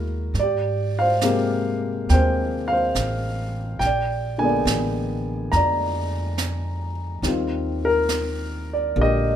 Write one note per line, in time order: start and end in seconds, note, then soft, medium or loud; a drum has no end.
0.00 0.31 D#2 medium
0.00 0.34 G#3 soft
0.00 0.37 A#3 soft
0.00 0.36 E4 soft
0.00 0.38 F#4 soft
0.00 0.36 A#4 medium
0.34 2.04 G#2 medium
0.34 brush sweep soft
0.34 snare soft
0.39 1.23 G4 soft
0.39 0.91 D5 medium
0.99 2.12 C5 soft
0.99 2.15 F5 medium
1.21 3.82 C3 soft
1.21 3.82 G#3 soft
1.21 2.08 A#3 soft
1.21 3.82 G4 medium
1.21 snare soft
1.21 hi-hat pedal soft
2.09 2.91 D#2 medium
2.09 3.81 A#3 soft
2.09 3.82 C4 soft
2.09 3.83 G#4 soft
2.09 2.68 G5 medium
2.09 brush sweep soft
2.09 snare soft
2.14 2.71 C5 soft
2.68 3.85 F5 medium
2.73 3.80 C5 soft
2.95 3.77 A1 medium
2.95 snare soft
2.95 hi-hat pedal soft
3.79 4.62 A#1 medium
3.79 4.33 G5 medium
3.79 brush sweep soft
3.79 snare soft
3.86 4.43 D5 medium
4.38 7.24 D3 soft
4.38 7.25 A#3 soft
4.38 7.26 B3 soft
4.38 5.57 G#5 medium
4.43 7.26 G#4 soft
4.43 5.55 D5 soft
4.65 5.48 A1 medium
4.65 snare soft
4.65 hi-hat pedal soft
5.52 7.20 F2 medium
5.52 6.91 A#5 medium
5.52 brush sweep soft
5.52 snare soft
5.56 7.22 D5 soft
6.38 snare soft
6.38 hi-hat pedal soft
7.22 8.92 D#2 medium
7.22 9.36 D#3 soft
7.22 9.36 G3 soft
7.22 9.36 C4 soft
7.22 brush sweep soft
7.22 snare soft
7.27 9.36 F4 soft
7.85 8.72 A#4 medium
8.09 snare soft
8.09 hi-hat pedal soft
8.73 9.00 D5 medium
8.96 9.36 A#1 medium
8.96 9.36 D3 soft
8.96 9.36 A#3 soft
8.96 9.01 G4 soft
8.96 brush sweep soft
9.01 9.36 G4 medium
9.01 9.36 D#5 medium